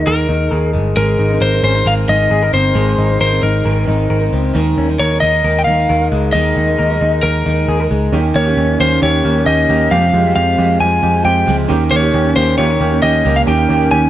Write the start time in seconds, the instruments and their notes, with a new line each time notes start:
Already playing: clean electric guitar D#3 G#3 D#4
0.06 picked electric bass D#2, clean electric guitar A#4, lead electric guitar A#4
0.29 picked electric bass D#2, clean electric guitar D#4
0.51 picked electric bass D#2, clean electric guitar A#4
0.55 lead electric guitar G#4
0.73 picked electric bass G1, clean electric guitar G#3
0.96 picked electric bass G#1, twelve-string acoustic guitar G#3 C4 D#4 A#4, clean electric guitar G#3, lead electric guitar A#4
1.18 picked electric bass G#1, clean electric guitar D#4
1.29 twelve-string acoustic guitar C4 D#4 A#4
1.41 picked electric bass G#1, clean electric guitar A#4, lead electric guitar C5
1.51 twelve-string acoustic guitar C4 D#4 A#4
1.63 picked electric bass G#1, clean electric guitar C#4, lead electric guitar C5
1.75 clean electric guitar D#4
1.85 picked electric bass G#1, twelve-string acoustic guitar G#3 C4 D#4 A#4, clean electric guitar A#4, lead electric guitar F5
2.08 picked electric bass G#1, twelve-string acoustic guitar G#3 C4 D#4 A#4, clean electric guitar D#4, lead electric guitar D#5
2.30 picked electric bass G#1, clean electric guitar G#4
2.41 twelve-string acoustic guitar C4 A#4, clean electric guitar A#4
2.53 picked electric bass G1, clean electric guitar C4, lead electric guitar C5
2.74 picked electric bass G#1, twelve-string acoustic guitar G#3 C4 D#4 A#4, clean electric guitar G#3
2.98 picked electric bass G#1, clean electric guitar D#4
3.08 twelve-string acoustic guitar C4 D#4 A#4
3.21 picked electric bass G#1, clean electric guitar A#4, lead electric guitar C5
3.29 twelve-string acoustic guitar C4 D#4 A#4
3.43 picked electric bass G#1, clean electric guitar D#4, lead electric guitar A#4
3.64 picked electric bass G#1, twelve-string acoustic guitar G#3 C4 D#4 A#4, clean electric guitar A#4
3.86 picked electric bass G#1, twelve-string acoustic guitar G#3 C4 D#4 A#4, clean electric guitar D#4
4.10 picked electric bass G#1, clean electric guitar A#4
4.19 twelve-string acoustic guitar C4 D#4 A#4
4.33 picked electric bass C#2, clean electric guitar C4
4.53 picked electric bass D#2, twelve-string acoustic guitar D#3 G#3 D#4 A#4, clean electric guitar D#3
4.78 picked electric bass D#2, clean electric guitar C#4
4.87 twelve-string acoustic guitar G#3 D#4 A#4, clean electric guitar D#4
4.99 picked electric bass D#2, clean electric guitar A#4, lead electric guitar C#5
5.10 twelve-string acoustic guitar G#3 D#4 A#4
5.20 picked electric bass D#2, clean electric guitar D#4, lead electric guitar D#5
5.44 picked electric bass D#2, twelve-string acoustic guitar D#3 G#3 D#4 A#4, clean electric guitar A#4
5.59 lead electric guitar G5
5.64 picked electric bass D#2, twelve-string acoustic guitar D#3 G#3, clean electric guitar D#4, lead electric guitar F5
5.69 twelve-string acoustic guitar D#4 A#4
5.89 picked electric bass D#2, clean electric guitar A#4
6.00 twelve-string acoustic guitar G#3 D#4 A#4
6.12 picked electric bass C#2, clean electric guitar G#3
6.33 picked electric bass D#2, clean electric guitar D#3, twelve-string acoustic guitar D#3 G#3 D#4, lead electric guitar D#5
6.37 twelve-string acoustic guitar A#4
6.57 picked electric bass D#2, clean electric guitar D#4
6.67 twelve-string acoustic guitar G#3 D#4 A#4
6.79 picked electric bass D#2, clean electric guitar A#4
6.90 twelve-string acoustic guitar G#3 D#4 A#4
7.01 picked electric bass D#2, clean electric guitar D#4
7.23 picked electric bass D#2, twelve-string acoustic guitar D#3 G#3 D#4 A#4, lead electric guitar A#4, clean electric guitar A#4
7.45 picked electric bass D#2, twelve-string acoustic guitar D#3 G#3 D#4 A#4, clean electric guitar D#4
7.68 picked electric bass D#2, clean electric guitar G#4
7.79 twelve-string acoustic guitar G#3 D#4 A#4, clean electric guitar A#4
7.91 picked electric bass C#2, clean electric guitar G#3
8.12 picked electric bass D#2, twelve-string acoustic guitar D#3 A#3 C#4 G4, clean electric guitar D#3, reed electric piano C#4 D#4 G4
8.35 picked electric bass D#2, clean electric guitar A#3, reed electric piano C#4 D#4 G4, lead electric guitar C#5
8.47 twelve-string acoustic guitar D#3 A#3 C#4 G4
8.57 picked electric bass D#2, reed electric piano C#4 D#4 G4, clean electric guitar C#4
8.79 picked electric bass D#2, twelve-string acoustic guitar D#3 A#3 C#4, clean electric guitar A#3, reed electric piano C#4 D#4 G4, lead electric guitar C5
8.83 twelve-string acoustic guitar G4
9.02 picked electric bass D#2, twelve-string acoustic guitar D#3 A#3 C#4 G4, reed electric piano C#4 D#4 G4, clean electric guitar G4, lead electric guitar C#5
9.24 picked electric bass D#2, clean electric guitar A#3, reed electric piano C#4 D#4 G4
9.37 twelve-string acoustic guitar A#3 C#4 G4
9.45 picked electric bass D#2, reed electric piano C#4 D#4 G4, clean electric guitar C#4, lead electric guitar D#5
9.68 picked electric bass D#2, twelve-string acoustic guitar D#3 A#3 C#4 G4, clean electric guitar A#3, reed electric piano C#4 D#4 G4
9.90 twelve-string acoustic guitar F2 C3 F3 G#3 C4 G4, clean electric guitar F2, picked electric bass F2, reed electric piano G#3 F4 G4, lead electric guitar F5
10.13 picked electric bass F2, reed electric piano G#3 F4 G4, clean electric guitar G#3
10.25 twelve-string acoustic guitar F2 C3 F3 G#3 C4 G4
10.35 picked electric bass F2, reed electric piano G#3 F4 G4, clean electric guitar C4, lead electric guitar F5
10.57 picked electric bass F2, twelve-string acoustic guitar F3 G#3 C4 G4, reed electric piano G#3 F4 G4, clean electric guitar G#3
10.79 picked electric bass F2, twelve-string acoustic guitar F3 G#3 C4, reed electric piano G#3 F4 G4, lead electric guitar G#5
11.02 picked electric bass F2, reed electric piano G#3 F4 G4, clean electric guitar G#3
11.13 twelve-string acoustic guitar F3 G#3 C4 G4
11.24 picked electric bass F2, reed electric piano G#3 F4 G4, clean electric guitar C4, lead electric guitar G5
11.46 picked electric bass C#2, twelve-string acoustic guitar F2 C3 F3 G#3 C4 G4, reed electric piano G#3 F4 G4, clean electric guitar G#3
11.68 picked electric bass D#2, twelve-string acoustic guitar D#3 A#3 C#4 G4, clean electric guitar D#3, reed electric piano C#4 D#4 G4
11.91 picked electric bass D#2, clean electric guitar A#3, reed electric piano C#4 D#4 G4, lead electric guitar C#5
12.02 twelve-string acoustic guitar D#3 A#3 C#4 G4
12.13 picked electric bass D#2, reed electric piano C#4 D#4 G4, clean electric guitar C#4
12.35 picked electric bass D#2, twelve-string acoustic guitar D#3 A#3 C#4 G4, clean electric guitar A#3, reed electric piano C#4 D#4 G4, lead electric guitar C5
12.58 picked electric bass D#2, twelve-string acoustic guitar D#3 A#3 C#4 G4, reed electric piano C#4 D#4 G4, clean electric guitar F4, lead electric guitar C#5
12.70 clean electric guitar G4
12.81 picked electric bass D#2, clean electric guitar A#3, reed electric piano C#4 D#4 G4
12.90 twelve-string acoustic guitar A#3 C#4 G4
13.02 picked electric bass D#2, reed electric piano C#4 D#4 G4, clean electric guitar C#4, lead electric guitar D#5
13.24 picked electric bass C#2, twelve-string acoustic guitar D#3 A#3 C#4 G4, clean electric guitar A#3, reed electric piano C#4 D#4 G4
13.36 lead electric guitar F5
13.46 picked electric bass D#2, twelve-string acoustic guitar D#3 A#3 C#4 G4, clean electric guitar D#3, reed electric piano C#4 D#4 G4, lead electric guitar G5
13.68 picked electric bass D#2, clean electric guitar A#3, reed electric piano C#4 D#4 G4
13.80 twelve-string acoustic guitar D#3 A#3 C#4 G4
13.91 picked electric bass D#2, reed electric piano C#4 D#4 G4, clean electric guitar C#4, lead electric guitar G#5